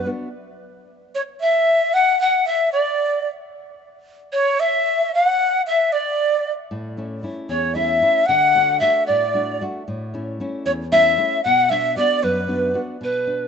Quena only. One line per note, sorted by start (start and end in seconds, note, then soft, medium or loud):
1.15 1.21 C#5 medium
1.41 1.95 E5 medium
1.94 2.18 F#5 medium
2.19 2.44 F#5 medium
2.45 2.70 E5 medium
2.72 3.28 D5 medium
4.33 4.62 C#5 medium
4.60 5.12 E5 medium
5.14 5.62 F#5 medium
5.66 5.94 E5 medium
5.93 6.51 D5 medium
7.50 7.77 C#5 medium
7.75 8.27 E5 medium
8.26 8.78 F#5 medium
8.79 9.04 E5 medium
9.07 9.62 D5 medium
10.66 10.72 C#5 medium
10.92 11.41 E5 medium
11.44 11.71 F#5 medium
11.70 11.96 E5 medium
11.96 12.25 D5 medium
12.23 12.82 B4 medium